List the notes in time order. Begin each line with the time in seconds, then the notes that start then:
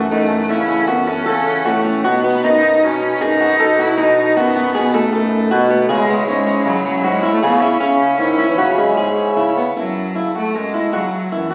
Already playing: E3 A4 F#5
0.10 F#2 A3 D#4
0.49 C#3 C#4 E4
0.68 E4
0.87 F#2 B3 F#4
1.07 C#4 A4
1.26 C#3 C#4 A4
1.65 A2 A3 F#4
1.84 C#4
2.04 B2 B3 D#4 F#4 B4 A5
2.24 B3
2.43 F#2 D#4
2.63 D#4
2.82 B2 C#4
3.01 D#4
3.21 F#2 D#4 G#4
3.40 F#4
3.60 B2 A4
3.79 E4 F#4
3.97 B2 D#4
4.36 F#2 B3 F#4
4.56 F#4
4.74 B2 B3 G#4
4.94 A3 A4
5.12 F#2 A4
5.51 B2 B3 F#4
5.65 B3
5.70 A3 B3
5.88 C#3 G#3 E4 G#4 C#5 B5
6.08 B3
6.27 G#2 G#3 C#4
6.47 C#4
6.65 C#3 F#3
6.85 F#3 C#4
7.03 G#2 G#3 F#4
7.23 E4
7.32 A3
7.42 C#3 B3 G#4
7.61 C#4 E4
7.80 C#3 C#4
8.01 C#3
8.18 G#2 D#3 E4
8.38 E4
8.48 E3
8.57 C#3 F#3 F#4
8.78 G#3 G#4
8.97 G#2 G#4
9.36 C#3 E4
9.57 B3
9.76 F#2 F#3 E4 F#4 E5 A5
10.15 C#3 E4
10.35 A3 F#4
10.53 F#2 G#3 C#4
10.74 E4
10.92 C#3 F#3 F#4
11.31 F#2 E3 E4
11.50 F#4